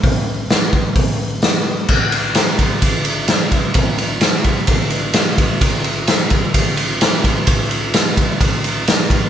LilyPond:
\new DrumStaff \with { instrumentName = "Drums" } \drummode { \time 4/4 \tempo 4 = 129 <hho bd>4 <hho sn>8 bd8 <hho bd>4 <hho sn>4 | <cymc bd>8 cymr8 <cymr sn>8 <bd cymr>8 <bd cymr>8 cymr8 <cymr sn>8 <bd cymr>8 | <bd cymr>8 cymr8 <cymr sn>8 <bd cymr>8 <bd cymr>8 cymr8 <cymr sn>8 <bd cymr>8 | <bd cymr>8 cymr8 <cymr sn>8 <bd cymr>8 <bd cymr>8 cymr8 <cymr sn>8 <bd cymr>8 |
<bd cymr>8 cymr8 <cymr sn>8 <bd cymr>8 <bd cymr>8 cymr8 <cymr sn>8 <bd cymr>8 | }